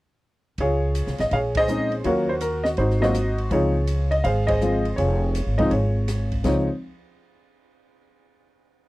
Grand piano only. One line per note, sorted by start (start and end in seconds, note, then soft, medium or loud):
0.60 1.29 F4 medium
0.60 1.29 G#4 medium
0.60 1.16 C#5 medium
1.20 1.33 D#5 medium
1.33 1.57 G#4 medium
1.33 2.02 C#5 medium
1.33 1.38 F5 medium
1.57 2.03 G#4 medium
1.57 2.03 C5 medium
1.57 1.90 D#5 loud
1.68 1.89 G#3 medium
1.68 1.90 C4 soft
1.68 1.90 C#4 soft
1.68 1.90 D#4 medium
2.04 2.26 F#3 soft
2.04 2.26 A#3 soft
2.04 2.27 C#4 soft
2.04 2.27 F4 medium
2.04 2.75 F#4 medium
2.04 2.40 A#4 medium
2.04 2.30 C#5 medium
2.29 2.34 C5 medium
2.41 2.64 A#4 medium
2.64 2.69 D#5 medium
2.78 3.48 D#4 medium
2.78 3.03 F#4 medium
2.78 3.00 C5 medium
3.01 3.13 F#3 medium
3.01 3.13 A#3 medium
3.01 3.13 C4 medium
3.01 3.13 F4 medium
3.01 3.49 F#4 medium
3.01 3.49 C5 medium
3.01 3.36 D#5 medium
3.51 3.72 F3 medium
3.51 3.73 G#3 soft
3.51 3.73 C4 soft
3.51 3.73 D#4 medium
3.51 4.21 F4 medium
3.51 4.21 G#4 medium
3.51 4.08 C#5 medium
4.11 4.24 D#5 medium
4.24 4.47 G#4 medium
4.24 4.48 C5 medium
4.24 4.49 F5 medium
4.47 4.97 G#4 medium
4.47 5.18 C5 medium
4.47 4.93 D#5 medium
4.61 4.83 F3 soft
4.61 4.83 G#3 soft
4.61 4.83 C4 soft
4.61 4.83 F4 medium
4.96 5.67 F4 medium
4.96 5.67 G#4 medium
4.96 5.53 C#5 medium
5.58 5.70 F3 medium
5.58 5.70 G#3 medium
5.58 5.70 C4 medium
5.58 5.70 D#4 medium
5.58 5.70 D#5 medium
5.71 6.41 F4 soft
5.71 6.41 G#4 soft
5.71 6.27 C#5 medium
6.45 6.66 F3 medium
6.45 6.66 G#3 soft
6.45 6.66 C4 medium
6.45 6.66 D#4 medium
6.45 6.67 C#5 medium